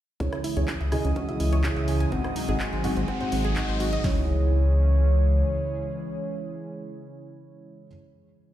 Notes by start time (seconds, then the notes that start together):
0.20 C#2 C#3 E3 G#3 C#4 E4 G#4 C#5 D#6, kick, closed hi-hat, riser
0.33 E5, cross-stick, closed hi-hat
0.44 E4 E5, open hi-hat
0.57 C#2 C#3 E4 G#4 C#5, closed hi-hat
0.68 G#4, kick, clap, closed hi-hat
0.81 C#2 E5, closed hi-hat
0.92 C#3 E4 G#4 D#5 G#5, cross-stick, open hi-hat
1.05 C#2 C#4, closed hi-hat
1.16 C#4 F#5, kick, closed hi-hat
1.28 C#3 E4 G#4 D#5 E5, closed hi-hat
1.40 C#2 C#4 E5, open hi-hat
1.53 C#5, closed hi-hat
1.64 C#3 E4 G#4 C#5, kick, clap, closed hi-hat
1.76 C#2 E5, closed hi-hat
1.88 G#4, open hi-hat
2.00 G#5, closed hi-hat
2.12 G#1 G#2 C3 F#3 C4 D#4 F#4 G#4 D#5 F#5, kick, closed hi-hat
2.24 C5, cross-stick, closed hi-hat
2.36 D#4, open hi-hat
2.49 G#1 G#2 C4 D#4 F#4 G#4 D#5, closed hi-hat
2.60 F#4 G#5, kick, clap, closed hi-hat
2.73 G#1 C5, closed hi-hat
2.84 G#2 C4 D#4 F#4 G#4 F#5, open hi-hat
2.96 G#1 C4, closed hi-hat
3.08 C4 F#5, kick, closed hi-hat
3.21 G#2 C4 D#4 F#4 G#4 C5 F#5, closed hi-hat
3.32 G#1 C4, open hi-hat
3.45 G#4, closed hi-hat
3.56 G#2 C4 D#4 F#4 G#4 D#5, kick, clap, closed hi-hat
3.69 G#1 C5, closed hi-hat
3.80 F#4, open hi-hat
3.93 D#5, closed hi-hat
4.04 C#2 C#3 E3 G#3 C#4 E4 G#4 C#5, kick, snare, open hi-hat